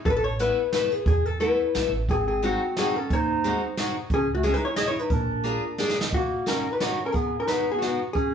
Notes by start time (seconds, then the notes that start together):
0.05 A1 A4, kick, closed hi-hat
0.10 B4
0.17 A4
0.24 C#5
0.39 A3 B3 E4 A4 B4, closed hi-hat
0.73 A3 B3 E4 A4 B4, snare, closed hi-hat
0.92 G#4
1.06 E2 G#4, kick, closed hi-hat
1.26 A4
1.39 A3 B3 E4 A4 B4, closed hi-hat
1.75 B1 A3 B3 E4 A4, snare, closed hi-hat
1.92 A1
2.08 G#1 C4 G#4, kick, closed hi-hat
2.26 C4 G#4
2.42 G#3 C4 D#4 F#4, closed hi-hat
2.77 G#3 C4 D#4 F#4 G#4, snare, closed hi-hat
2.96 C#4 A4
3.10 D#2 D#4 C5, kick, closed hi-hat
3.44 G#3 C4 D#4 F#4, closed hi-hat
3.77 G#3 C4 D#4 F#4, snare, closed hi-hat
4.10 C#2 C#4, kick, closed hi-hat
4.14 G#4
4.35 A3 F#4
4.43 G#3 C#4 E4 G#4, closed hi-hat
4.54 D#4 B4
4.65 C#5
4.69 E4
4.76 G#3 C#4 E4 G#4 D#5, snare, closed hi-hat
4.88 E4 C#5
4.99 D#4 B4
5.10 A#1 D4 A#4, kick, closed hi-hat
5.44 A#3 D4 F4 G#4, closed hi-hat
5.78 A#3 D4 F4 G#4, snare
5.90 snare
6.01 snare
6.13 A#3 F#4, kick, closed hi-hat
6.46 A#3 C#4 D#4 F#4 A#4, snare, closed hi-hat
6.71 D#4 B4
6.79 A#3 C#4 D#4 F#4 C#5, snare, closed hi-hat
7.05 C#4 A#4
7.12 B3 G#4, kick, closed hi-hat
7.39 C#4 A#4
7.45 G#3 B3 D#4 F#4 B4, snare, closed hi-hat
7.72 B3 G#4
7.79 B3 F#4, snare, closed hi-hat
7.83 G#3 D#4 F#4
8.13 C#4 G#4, kick, closed hi-hat